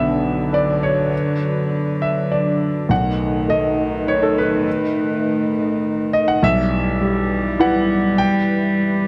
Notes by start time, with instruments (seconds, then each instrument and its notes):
Already playing: grand piano B1 B3 E5 F#5, cello D3, analog synth pad F#3 D4 B4
0.52 grand piano D4 B4 D5
0.83 grand piano C#5
2.02 grand piano E5
2.32 grand piano D5
2.89 grand piano B1 F#5, cello D#3, analog synth pad A3 D#4 B4
3.48 grand piano A3 D#5
4.07 grand piano D#4 B4 C#5
4.23 grand piano A4
4.38 grand piano B4
6.13 grand piano D#5
6.28 grand piano F#5
6.43 grand piano B1 E5, cello G3, analog synth pad G3 E4 B4
7.01 grand piano G3
7.59 grand piano E4 B4 F#5
8.18 grand piano G5